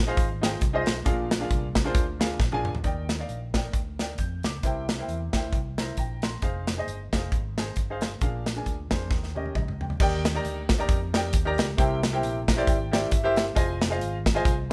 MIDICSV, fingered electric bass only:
0, 0, Header, 1, 2, 480
1, 0, Start_track
1, 0, Key_signature, -3, "major"
1, 0, Tempo, 446097
1, 1143, Time_signature, 4, 2, 24, 8
1, 15846, End_track
2, 0, Start_track
2, 0, Title_t, "Fingered electric bass"
2, 0, Program_c, 0, 33
2, 0, Note_on_c, 0, 34, 98
2, 117, Note_off_c, 0, 34, 0
2, 184, Note_on_c, 0, 32, 92
2, 591, Note_off_c, 0, 32, 0
2, 663, Note_on_c, 0, 36, 98
2, 894, Note_off_c, 0, 36, 0
2, 945, Note_on_c, 0, 35, 93
2, 1117, Note_off_c, 0, 35, 0
2, 1140, Note_on_c, 0, 34, 109
2, 1548, Note_off_c, 0, 34, 0
2, 1621, Note_on_c, 0, 36, 97
2, 2028, Note_off_c, 0, 36, 0
2, 2096, Note_on_c, 0, 38, 87
2, 2506, Note_off_c, 0, 38, 0
2, 2581, Note_on_c, 0, 34, 89
2, 2989, Note_off_c, 0, 34, 0
2, 3057, Note_on_c, 0, 39, 89
2, 3467, Note_off_c, 0, 39, 0
2, 3538, Note_on_c, 0, 34, 70
2, 3948, Note_off_c, 0, 34, 0
2, 4015, Note_on_c, 0, 38, 79
2, 4427, Note_off_c, 0, 38, 0
2, 4502, Note_on_c, 0, 41, 86
2, 4734, Note_off_c, 0, 41, 0
2, 4774, Note_on_c, 0, 37, 82
2, 4952, Note_off_c, 0, 37, 0
2, 4987, Note_on_c, 0, 36, 86
2, 5395, Note_off_c, 0, 36, 0
2, 5468, Note_on_c, 0, 40, 80
2, 5699, Note_off_c, 0, 40, 0
2, 5735, Note_on_c, 0, 38, 67
2, 5914, Note_off_c, 0, 38, 0
2, 5946, Note_on_c, 0, 36, 77
2, 6356, Note_off_c, 0, 36, 0
2, 6430, Note_on_c, 0, 34, 77
2, 6840, Note_off_c, 0, 34, 0
2, 6914, Note_on_c, 0, 29, 92
2, 7323, Note_off_c, 0, 29, 0
2, 7394, Note_on_c, 0, 31, 75
2, 7626, Note_off_c, 0, 31, 0
2, 7667, Note_on_c, 0, 29, 68
2, 7844, Note_off_c, 0, 29, 0
2, 7874, Note_on_c, 0, 32, 90
2, 8284, Note_off_c, 0, 32, 0
2, 8358, Note_on_c, 0, 31, 70
2, 8767, Note_off_c, 0, 31, 0
2, 8841, Note_on_c, 0, 34, 79
2, 9249, Note_off_c, 0, 34, 0
2, 9325, Note_on_c, 0, 38, 72
2, 9554, Note_off_c, 0, 38, 0
2, 9589, Note_on_c, 0, 41, 63
2, 9795, Note_off_c, 0, 41, 0
2, 9795, Note_on_c, 0, 39, 82
2, 10206, Note_off_c, 0, 39, 0
2, 10278, Note_on_c, 0, 37, 80
2, 10688, Note_off_c, 0, 37, 0
2, 10758, Note_on_c, 0, 39, 105
2, 11168, Note_off_c, 0, 39, 0
2, 11240, Note_on_c, 0, 38, 84
2, 11648, Note_off_c, 0, 38, 0
2, 11711, Note_on_c, 0, 41, 100
2, 12201, Note_off_c, 0, 41, 0
2, 12201, Note_on_c, 0, 39, 91
2, 12431, Note_off_c, 0, 39, 0
2, 12471, Note_on_c, 0, 37, 106
2, 12647, Note_off_c, 0, 37, 0
2, 12678, Note_on_c, 0, 36, 113
2, 13156, Note_off_c, 0, 36, 0
2, 13156, Note_on_c, 0, 34, 92
2, 13563, Note_off_c, 0, 34, 0
2, 13634, Note_on_c, 0, 32, 93
2, 14042, Note_off_c, 0, 32, 0
2, 14117, Note_on_c, 0, 31, 97
2, 14522, Note_off_c, 0, 31, 0
2, 14595, Note_on_c, 0, 29, 106
2, 15077, Note_off_c, 0, 29, 0
2, 15077, Note_on_c, 0, 32, 91
2, 15481, Note_off_c, 0, 32, 0
2, 15551, Note_on_c, 0, 36, 97
2, 15846, Note_off_c, 0, 36, 0
2, 15846, End_track
0, 0, End_of_file